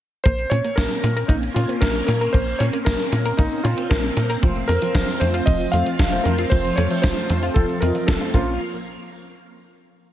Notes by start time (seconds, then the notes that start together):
0.24 A#1 A#3 C4 C#4 C5, kick, closed hi-hat
0.38 closed hi-hat
0.50 A#2 C#4 C#5, closed hi-hat
0.65 A#3, closed hi-hat
0.76 A#1 A#3 A#4, kick, snare, closed hi-hat
0.91 closed hi-hat
1.04 A#2 A#3, closed hi-hat
1.17 A#4, closed hi-hat
1.28 A#1 A#3 D#4, kick, closed hi-hat
1.43 closed hi-hat
1.54 A#2 C#4 F4, closed hi-hat
1.69 C4, closed hi-hat
1.81 A#1 A#3 A#4, kick, snare, closed hi-hat
1.95 closed hi-hat
2.07 A#2 A#3 A#4, closed hi-hat
2.21 A#4, closed hi-hat
2.33 A#1 A#3 C5, kick, closed hi-hat
2.47 closed hi-hat
2.59 A#2 C#4 C#5, closed hi-hat
2.73 A#3, closed hi-hat
2.85 A#1 A#3 A#4, kick, snare, closed hi-hat
3.00 closed hi-hat
3.12 A#2 A#3, closed hi-hat
3.25 A#4, closed hi-hat
3.37 A#1 A#3 D#4, kick, closed hi-hat
3.52 closed hi-hat
3.64 A#2 C#4 F4, closed hi-hat
3.78 C4, closed hi-hat
3.90 A#1 A#3 A#4, kick, snare, closed hi-hat
4.04 closed hi-hat
4.17 A#2 A#3, closed hi-hat
4.30 A#4, closed hi-hat
4.43 F1 F3 A3 C4 F4 C5, kick, closed hi-hat
4.56 closed hi-hat
4.68 F2 A3 A#4, closed hi-hat
4.82 F3 C4 F4 C5, closed hi-hat
4.95 F1 F3, kick, snare, closed hi-hat
5.08 closed hi-hat
5.20 F2 F3 A3 C4 F4 C5, closed hi-hat
5.34 F4, closed hi-hat
5.46 F1 F3 D#5, kick, closed hi-hat
5.60 closed hi-hat
5.72 F2 A3 C4 F4 C5 F5, closed hi-hat
5.86 F3, closed hi-hat
5.99 F1 F3, kick, snare, closed hi-hat
6.12 A3 C4 F4 C5, closed hi-hat
6.24 F2 F3 A#4, closed hi-hat
6.38 F4, closed hi-hat
6.50 F1 F3 A3 C4 F4 C5, kick, closed hi-hat
6.64 closed hi-hat
6.76 F2 A3 C#5, closed hi-hat
6.91 F3 A3 C4 F4 C5, closed hi-hat
7.02 F1 F3 C5, kick, snare, closed hi-hat
7.17 closed hi-hat
7.30 F2 F3 A3 C4 F4 C5, closed hi-hat
7.43 F4, closed hi-hat
7.54 F1 F3 A4, kick, closed hi-hat
7.69 closed hi-hat
7.80 F2 A3 C4 F4 A#4 D#5, closed hi-hat
7.95 F3, closed hi-hat
8.07 F1 F3 A4, kick, snare, closed hi-hat
8.21 A3 C4 F4 C5, closed hi-hat
8.34 A#1 A#3 C#4 F4 C5, kick